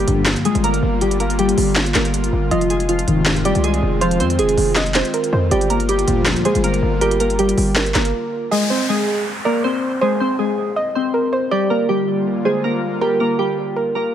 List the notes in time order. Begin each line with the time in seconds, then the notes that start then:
Already playing: D3 G3 A#3 F4 G4
0.08 G1 A#1 G2 D3, closed hi-hat
0.26 snare, clap, closed hi-hat
0.36 closed hi-hat
0.45 G#3 G#4, closed hi-hat
0.55 G1, closed hi-hat
0.64 A#3 A#4, closed hi-hat
0.74 closed hi-hat
0.83 G1
1.01 G3 G4, closed hi-hat
1.11 closed hi-hat
1.20 A#3 A#4, closed hi-hat
1.30 closed hi-hat
1.39 G3 G4, closed hi-hat
1.49 closed hi-hat
1.58 G1, open hi-hat
1.76 snare, clap, closed hi-hat
1.86 closed hi-hat
1.94 G1 A#3 A#4, snare, clap, closed hi-hat
2.05 closed hi-hat
2.14 closed hi-hat
2.24 closed hi-hat
2.33 G1
2.51 F1 D#3 F3 G#3 C4 F4 D#5, closed hi-hat
2.61 closed hi-hat
2.70 G#3 G#4, closed hi-hat
2.80 closed hi-hat
2.89 F3 F4, closed hi-hat
2.99 closed hi-hat
3.08 F1 C2 G#2 D#3, closed hi-hat
3.26 snare, clap, closed hi-hat
3.36 closed hi-hat
3.45 G3 G4 D5, closed hi-hat
3.55 C2, closed hi-hat
3.64 G#3 G#4, closed hi-hat
3.74 closed hi-hat
3.83 F1
4.01 F3 F4 C5, closed hi-hat
4.11 closed hi-hat
4.20 F2 C4 C5, closed hi-hat
4.30 closed hi-hat
4.39 F1 G#3 G#4, closed hi-hat
4.49 closed hi-hat
4.58 F1, open hi-hat
4.76 D#5, snare, clap, closed hi-hat
4.86 closed hi-hat
4.94 C4 C5, snare, clap, closed hi-hat
5.05 closed hi-hat
5.14 A#4, closed hi-hat
5.24 closed hi-hat
5.33 F2 C5
5.51 G1 D3 G3 A#3 F4 G4 D5, closed hi-hat
5.61 closed hi-hat
5.70 A#3 A#4, closed hi-hat
5.80 closed hi-hat
5.89 G3 G4, closed hi-hat
5.99 closed hi-hat
6.08 G1 D2 A#2 F3, closed hi-hat
6.26 snare, clap, closed hi-hat
6.36 closed hi-hat
6.45 G#3 G#4 C5, closed hi-hat
6.55 G1, closed hi-hat
6.64 A#3 A#4, closed hi-hat
6.74 closed hi-hat
6.83 G1
7.01 G3 G4 A#4, closed hi-hat
7.11 closed hi-hat
7.20 A#3 A#4, closed hi-hat
7.30 closed hi-hat
7.39 G3 G4, closed hi-hat
7.49 closed hi-hat
7.58 G1, open hi-hat
7.76 A#4, snare, clap, closed hi-hat
7.86 closed hi-hat
7.94 G1 A#3 A#4, snare, clap, closed hi-hat
8.05 closed hi-hat
8.51 G#3 G#4 D#5, downlifter
8.70 C4 C5
8.89 G#3 G#4
9.45 A#3 A#4 D5
9.64 C4 C5
10.01 G#3 G#4 C5
10.20 C4 C5
10.39 G#3 G#4
10.76 D#5
10.95 C4 C5
11.14 A#4
11.33 C5
11.51 D3 G3 A#3 F4 G4 D5
11.70 A#3 A#4
11.89 G3 G4
12.45 G#3 G#4 C5
12.64 A#3 A#4
13.01 G3 G4 A#4
13.20 A#3 A#4
13.39 G3 G4
13.76 A#4
13.95 A#3 A#4